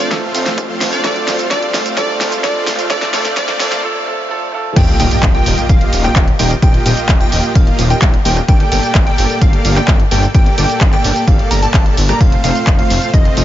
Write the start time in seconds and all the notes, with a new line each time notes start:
Already playing: A3 C4 F4 A4, riser
0.00 cabasa
0.10 F1 A3 C4 F4 A4 C5 F5, kick, snare, closed hi-hat, cabasa
0.34 F1 A3 C4 F4 C5 F5, open hi-hat, cabasa
0.46 snare, closed hi-hat, cabasa
0.58 F1, kick, closed hi-hat, cabasa
0.69 A3 C4 F4 C5 F5
0.81 F1, snare, open hi-hat, cabasa
0.93 D5, closed hi-hat, cabasa
1.03 A#1 A3 C4 F4 A4 C5 D5 F5, kick, snare, closed hi-hat, cabasa
1.16 closed hi-hat
1.28 A#1 A3 C4 F4 C5 F5, snare, open hi-hat, cabasa
1.39 closed hi-hat, cabasa
1.50 A#1 A3 C4 F4 A4 C5 D5 F5, kick, snare, closed hi-hat, cabasa
1.62 closed hi-hat
1.74 A#1 A3 C4 F4 C5 F5, snare, open hi-hat, cabasa
1.86 closed hi-hat, cabasa
1.96 A#1 A3 C4 F4 A4 C5 D5 F5, kick, snare, closed hi-hat, cabasa
2.21 A#1 A3 C4 F4 C5 F5, snare, open hi-hat, cabasa
2.32 closed hi-hat, cabasa
2.43 A#1 A3 C4 F4 A4 C5 D5 F5, kick, snare, closed hi-hat, cabasa
2.67 A#1 A3 C4 F4 C5 F5, snare, open hi-hat, cabasa
2.79 closed hi-hat, cabasa
2.89 A#1 A3 C4 F4 A4 C5 D5 F5, kick, snare, closed hi-hat, cabasa
3.02 snare, closed hi-hat
3.12 A#1 A3 C4 F4 A4 C5 D5 F5, snare, open hi-hat, cabasa
3.25 snare, closed hi-hat, cabasa
3.36 A#1 A3 C4 F4 A4 C5 D5 F5, kick, snare, closed hi-hat, cabasa
3.48 snare, closed hi-hat
3.59 A#1 A3 C4 F4 A4 C5 D5 F5, snare, open hi-hat, cabasa
3.72 snare, closed hi-hat, cabasa
3.82 A3 C4 F4 A4
4.05 A3 C4 F4 A4
4.29 A3 C4 F4 A4
4.52 A3 C4 F4 A4
4.76 D#1 A#3 F4 G4 D#5 G5, kick, closed hi-hat, crash, impact, cabasa
4.88 closed hi-hat
5.00 D#1 A#3 F4 G4 D#5 G5, open hi-hat, cabasa
5.11 closed hi-hat, cabasa
5.23 D#1, kick, clap, closed hi-hat, cabasa
5.35 A#3 F4 G4 D#5 G5, closed hi-hat
5.46 D#1, open hi-hat, cabasa
5.58 closed hi-hat, cabasa
5.69 D#1 A#3 F4 G4 D#5 F5, kick, closed hi-hat, cabasa
5.81 closed hi-hat
5.93 D#1, open hi-hat, cabasa
6.04 A#3 F4 G4 D#5 G5, cross-stick, clap, closed hi-hat, cabasa
6.16 D#1, kick, clap, closed hi-hat, cabasa
6.28 closed hi-hat
6.39 D#1 A#3 F4 G4 D#5 G5, open hi-hat, cabasa
6.51 closed hi-hat, cabasa
6.62 D#1 A#3 F4 G4 D#5 G5, kick, closed hi-hat, cabasa
6.74 closed hi-hat
6.86 D#1 A#3 F4 G4 D#5 G5, open hi-hat, cabasa
6.97 closed hi-hat, cabasa
7.09 D#1, kick, clap, closed hi-hat, cabasa
7.21 A#3 F4 G4 D#5 G5, closed hi-hat
7.32 D#1, open hi-hat, cabasa
7.44 closed hi-hat, cabasa
7.55 D#1 A#3 F4 G4 D#5 F5, kick, closed hi-hat, cabasa
7.67 closed hi-hat
7.79 D#1, open hi-hat, cabasa
7.90 A#3 F4 G4 D#5 G5, closed hi-hat, cabasa
8.02 D#1, kick, clap, closed hi-hat, cabasa
8.14 closed hi-hat
8.25 D#1 A#3 F4 G4 D#5 G5, open hi-hat, cabasa
8.37 cross-stick, closed hi-hat, cabasa
8.48 G1 A#3 G4 A4 D5 G5, kick, closed hi-hat, cabasa
8.60 closed hi-hat
8.72 G1 A#3 G4 A4 D5 G5, open hi-hat, cabasa
8.83 closed hi-hat, cabasa
8.95 G1, kick, clap, closed hi-hat, cabasa
9.07 A#3 G4 A4 D5 G5, closed hi-hat
9.18 G1, open hi-hat, cabasa
9.30 closed hi-hat, cabasa
9.41 G1 A#3 G4 A4 D5 F5, kick, closed hi-hat, cabasa
9.53 closed hi-hat
9.65 G1, open hi-hat, cabasa
9.76 A#3 G4 A4 D5 G5, cross-stick, clap, closed hi-hat, cabasa
9.88 G1, kick, clap, closed hi-hat, cabasa
10.00 closed hi-hat
10.11 G1 A#3 G4 A4 D5 G5, open hi-hat, cabasa
10.23 closed hi-hat, cabasa
10.35 G1 A#3 G4 A4 D5 G5, kick, closed hi-hat, cabasa
10.46 closed hi-hat
10.58 G1 A#3 G4 A4 D5 G5, open hi-hat, cabasa
10.69 closed hi-hat, cabasa
10.81 G1, kick, cross-stick, clap, closed hi-hat, cabasa
10.93 A#3 G4 A4 D5 G5, clap, closed hi-hat
11.04 G1, open hi-hat, cabasa
11.16 closed hi-hat, cabasa
11.28 G1 A#3 G4 A4 D5 F5, kick, closed hi-hat, cabasa
11.39 closed hi-hat
11.51 G1 A#3 G4 A4 D5 A#5, open hi-hat, cabasa
11.62 A#3 G4 A4 D5 A5, closed hi-hat, cabasa
11.74 G1 A#3 G4 A4 D5 A5, kick, clap, closed hi-hat, cabasa
11.86 closed hi-hat
11.97 G1, open hi-hat, cabasa
12.09 A#3 G4 A4 D5 A#5, cross-stick, closed hi-hat, cabasa
12.21 F1 A3 C4 F4 C5 F5, kick, closed hi-hat, cabasa
12.32 closed hi-hat
12.44 F1 A3 C4 F4 C5 F5, open hi-hat, cabasa
12.55 closed hi-hat, cabasa
12.67 F1, kick, clap, closed hi-hat, cabasa
12.79 A3 C4 F4 C5 F5, closed hi-hat
12.90 F1, open hi-hat, cabasa
13.02 closed hi-hat, cabasa
13.14 F1 A3 C4 F4 C5 D#5, kick, closed hi-hat, cabasa
13.25 closed hi-hat
13.37 F1, open hi-hat, cabasa